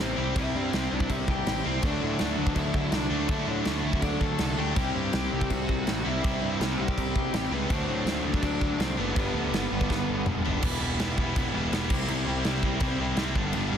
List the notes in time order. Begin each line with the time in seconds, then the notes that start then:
Already playing: C3 G3 C4 E4 G4
0.00 A1 C3 G3 C4 C5
0.16 C2 C3 G3 C4 E4 G4
0.35 C2 C3 G3 C4 E4 G4 E5, kick, crash
0.55 G2 C4 C5
0.73 C2, snare, crash
0.90 C2 C3 G3 C4 D4 D5
1.00 kick
1.10 C2 E4 E5, kick, crash
1.28 C2 G4 G5, kick
1.45 A1 C3 G3 C4, snare, crash
1.64 C2 C3 G3 C4 E4 G4 C5
1.80 D2 D3 F#3 A3 D4, kick, crash
1.85 D4 F#4 D5
2.04 A2
2.19 D2, snare, crash
2.36 D2 D3 A3 D4
2.47 kick
2.56 D2 E4 E5, kick, crash
2.74 D2 E4 E5, kick
2.91 C2 D3 A3 D4 D5, snare, crash
3.10 D2 D3 F#3 A3 D4 F#4
3.27 D2 D3 F#3 A3 D4 E4 E5, kick, crash
3.32 D4 F#4
3.47 A2 D4 D5
3.65 D2, snare, crash
3.82 D2 D3 A3 D4 E4 E5
3.93 kick
4.02 D2 D4 D5, kick, crash
4.21 D2 A4 A5, kick
4.39 C2 D3 A3 A4 A5, snare, crash
4.43 D4
4.58 D2 D3 F#3 A3 D4 F#4 G4 G5
4.75 C2 C3 G3 C4 E4, kick, crash
4.79 C4
4.95 G2
5.13 C2, snare, crash
5.31 C2 C3 G3 C4
5.41 kick
5.50 C2 F#4 F#5, kick, crash
5.69 C2, kick
5.85 A1 C3 G3 C4, snare, crash
6.05 C2 C3 G3 C4 E4 E5
6.22 C2 C3 G3 C4 E4, kick, crash
6.42 G2
6.60 C2, snare, crash
6.77 C2 C3 G3 C4 G4 G5
6.88 kick
6.98 C2, kick, crash
7.16 C2, kick
7.33 A1 C3 G3 C4, snare, crash
7.51 C#2 G3 B3 C4 E4 B4
7.55 C3
7.69 D2 D3 F#3 A3 C4 D4 C5, kick, crash
7.87 A2
8.05 D2, snare, crash
8.24 D2 D3 A3 D4
8.34 kick
8.42 D2 D4 D5, kick, crash
8.61 D2, kick
8.78 C2 D3 A3 C4 D4 C5, snare, crash
8.97 F#1 D3 F#3 A3 B3 D4 B4
9.14 G1 G2 D3 G3 B3 D4, kick, crash
9.19 G3
9.34 D2
9.51 G1, snare, crash
9.71 G1 G2 D3 G3
9.81 kick
9.90 G1, kick, snare
10.08 G1
10.25 E1 G2 D3 G3, mid tom
10.45 G1 G2 D3 G3 B3 D4, floor tom
10.62 E1 E3 G3 B3 E4, kick, crash
10.80 E1 E3 G3 B3 E4
10.98 E1 E3 G3 B3 E4, snare, crash
11.18 E3 G3 B3 E4, kick
11.36 E1 E3 G3 B3 E4, kick, crash
11.53 E1 E3 G3 B3 E4
11.71 E1 E3 G3 B3 E4, snare, crash
11.89 C2 C3 G3 C4 E4, kick, crash
12.08 C2 C3 G3 C4 E4, crash
12.26 C2 C3 G3 C4 E4
12.45 C2 C3 G3 C4 E4, snare, crash
12.63 C2 C3 G3 C4 E4, kick
12.80 C2 C3 G3 C4 E4, kick, crash
12.99 C2 C3 G3 C4 E4
13.16 C2 C3 G3 C4 E4, snare, crash
13.36 G1 G2 D3 G3 B3 D4, kick
13.52 G1 G2 D3 G3 B3 D4, crash
13.71 G1 G2 D3 G3 B3 D4